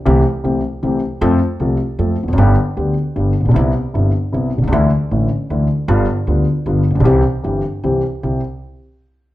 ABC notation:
X:1
M:3/4
L:1/16
Q:1/4=154
K:C
V:1 name="Grand piano" clef=bass
[C,,C,E,A,CG]2 z2 [C,,C,E,A,CG]2 z2 [C,,C,E,A,CG]2 z2 | [F,,F,A,CA]2 z2 [C,,C,F,A,CA]2 z2 [F,,F,A,CA]2 z/2 E,,/2 F,,/2 ^F,,/2 | [G,,,G,,D,G,B,G]2 z2 [D,,D,G,B,G]2 z2 [G,,,G,,D,G,B,G]2 z/2 A,,,/2 _B,,,/2 =B,,,/2 | [C,,C,G,B,E]2 z2 [G,,,G,,C,G,B,E]2 z2 [C,,C,G,B,E]2 z/2 B,,,/2 C,,/2 _D,,/2 |
[D,,D,E,A,E]2 z2 [A,,,A,,D,E,A,E]2 z2 [D,,D,E,A,E]2 z2 | [G,,,G,,D,G,B,F]2 z2 [D,,D,G,B,F]2 z2 [G,,,G,,D,G,B,F]2 z/2 A,,,/2 _B,,,/2 =B,,,/2 | [C,,C,E,G,CG]2 z2 [G,,,G,,E,G,CG]2 z2 [C,,C,E,G,CG]2 z2 | [C,,CEG]2 z8 z2 |]
V:2 name="Upright bass" clef=bass
C,,3/2 z2 z/2 C,,3/2 z2 z/2 C,,3/2 z2 z/2 | F,,3/2 z2 z/2 C,,3/2 z2 z/2 F,,3/2 z E,,,/2 F,,,/2 ^F,,,/2 | G,,,3/2 z2 z/2 D,,3/2 z2 z/2 G,,,3/2 z A,,,/2 _B,,,/2 =B,,,/2 | C,,3/2 z2 z/2 G,,,3/2 z2 z/2 C,,3/2 z B,,,/2 C,,/2 _D,,/2 |
D,,3/2 z2 z/2 A,,,3/2 z2 z/2 D,,3/2 z2 z/2 | G,,,3/2 z2 z/2 D,,3/2 z2 z/2 G,,,3/2 z A,,,/2 _B,,,/2 =B,,,/2 | C,,3/2 z2 z/2 G,,,3/2 z2 z/2 C,,3/2 z2 z/2 | C,,2 z8 z2 |]